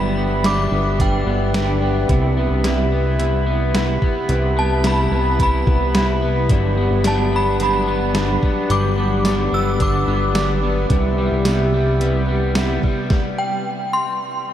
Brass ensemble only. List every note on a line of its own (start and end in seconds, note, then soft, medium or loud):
0.00 10.86 G4 medium
0.00 2.06 D5 medium
0.00 2.08 E5 medium
0.00 2.06 B5 medium
2.09 6.46 B4 medium
2.09 6.46 E5 medium
2.09 13.06 B5 medium
6.51 10.87 D5 medium
6.51 10.87 F#5 medium
10.90 13.08 G4 medium
10.90 13.08 B4 medium
10.90 13.08 E5 medium